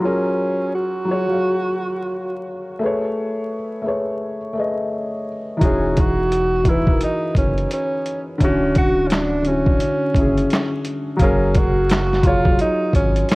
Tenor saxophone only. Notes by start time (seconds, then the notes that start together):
0.05 C#4
0.75 F#4
5.65 C#4
6.00 F#4
6.69 E4
7.04 D#4
7.38 C#4
7.73 C#4
8.43 C#4
8.78 F#4
9.08 C#4
9.13 D4
9.47 C#4
11.22 C#4
11.58 F#4
12.27 F4
12.61 D#4
12.96 C#4
13.31 C#4